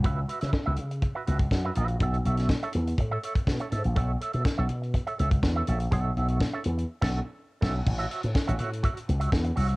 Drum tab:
CC |----------------|----------------|----------------|---------x----x-|
HH |x-xx--xxx-xx--xx|xxxx-xxxx-xx-xxx|x-xx--xxxxxx--xx|x-xx--xx--------|
SD |---oo-------o---|---oo-------o---|----o-------o---|----o----o----o-|
BD |o---o---o--oo---|o---o---o--oo---|o---o---o--oo---|o---o----o----o-|

CC |x---------------|
HH |-xxx-xxxxxxx-xox|
SD |----o-------o---|
BD |o---o---o---o---|